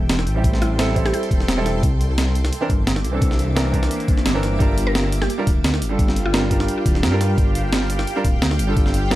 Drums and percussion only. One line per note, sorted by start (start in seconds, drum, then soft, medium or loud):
0.09 snare loud
0.09 closed hi-hat medium
0.19 snare medium
0.27 closed hi-hat medium
0.44 kick loud
0.44 closed hi-hat medium
0.54 snare soft
0.62 closed hi-hat medium
0.79 snare loud
0.79 closed hi-hat medium
0.96 kick medium
0.96 closed hi-hat medium
1.06 snare medium
1.06 closed hi-hat soft
1.14 closed hi-hat medium
1.23 closed hi-hat soft
1.31 kick loud
1.31 closed hi-hat medium
1.40 snare soft
1.48 snare loud
1.48 closed hi-hat medium
1.66 snare soft
1.66 closed hi-hat medium
1.83 kick loud
1.83 closed hi-hat medium
2.01 closed hi-hat medium
2.18 snare loud
2.18 closed hi-hat loud
2.35 closed hi-hat medium
2.45 snare medium
2.45 closed hi-hat soft
2.53 closed hi-hat medium
2.70 kick loud
2.70 closed hi-hat medium
2.87 snare loud
2.87 closed hi-hat medium
2.96 snare medium
3.05 closed hi-hat medium
3.22 kick loud
3.22 closed hi-hat loud
3.31 snare soft
3.39 closed hi-hat medium
3.57 snare loud
3.57 closed hi-hat loud
3.74 kick medium
3.74 closed hi-hat medium
3.83 snare medium
3.83 closed hi-hat soft
3.91 closed hi-hat loud
4.00 closed hi-hat soft
4.08 kick loud
4.08 closed hi-hat medium
4.17 snare soft
4.26 snare loud
4.26 closed hi-hat loud
4.43 snare soft
4.43 closed hi-hat medium
4.60 kick loud
4.60 closed hi-hat medium
4.78 closed hi-hat loud
4.95 snare loud
4.95 closed hi-hat medium
5.12 closed hi-hat loud
5.22 snare medium
5.30 closed hi-hat medium
5.47 kick loud
5.47 closed hi-hat loud
5.64 snare loud
5.64 closed hi-hat medium
5.74 snare medium
5.82 closed hi-hat loud
5.99 kick loud
5.99 closed hi-hat medium
6.08 snare soft
6.16 closed hi-hat medium
6.34 snare loud
6.34 closed hi-hat medium
6.51 kick medium
6.51 closed hi-hat medium
6.60 snare medium
6.68 closed hi-hat medium
6.86 kick loud
6.86 closed hi-hat loud
6.95 snare soft
7.03 snare loud
7.03 closed hi-hat medium
7.21 snare soft
7.21 closed hi-hat loud
7.38 kick loud
7.38 closed hi-hat medium
7.55 closed hi-hat medium
7.73 snare loud
7.73 closed hi-hat medium
7.90 closed hi-hat medium
7.99 snare medium
8.07 closed hi-hat medium
8.25 kick loud
8.25 closed hi-hat medium
8.42 snare loud
8.42 closed hi-hat medium
8.51 snare medium
8.59 closed hi-hat medium
8.77 kick loud
8.77 closed hi-hat medium
8.86 snare soft
8.94 closed hi-hat medium
9.11 snare loud
9.11 closed hi-hat medium